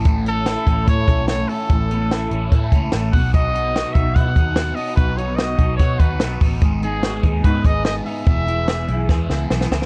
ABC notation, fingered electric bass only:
X:1
M:4/4
L:1/8
Q:1/4=146
K:Bmix
V:1 name="Fingered electric bass" clef=bass
A,,,3 A,,, A,, B,,,2 z | A,,,3 A,,, A,, C,, A,,, B,,,- | B,,,3 B,,, B,, D,,2 z | B,,,3 B,,, B,, D,, B,,, A,,, |
G,,,3 D,, G,, G,,,2 z | E,,,3 B,,, E,, C,, B,,, C,, |]